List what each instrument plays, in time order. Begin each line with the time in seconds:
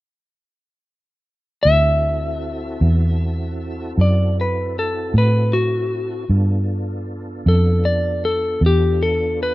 1.63 fingered electric bass D2, tonewheel organ C4 E4 F#4 A4, electric slide guitar E5
2.81 fingered electric bass E2
3.98 fingered electric bass F#2, electric slide guitar D5
4.41 electric slide guitar B4
4.79 electric slide guitar A4
5.14 fingered electric bass A2
5.18 electric slide guitar B4
5.53 electric slide guitar F#4
6.29 fingered electric bass G2, tonewheel organ B3 D4 F4 A4
7.46 fingered electric bass F2, electric slide guitar A4
7.85 electric slide guitar D5
8.25 electric slide guitar A4
8.61 fingered electric bass E2
8.66 electric slide guitar G4
9.03 electric slide guitar A4
9.43 electric slide guitar B4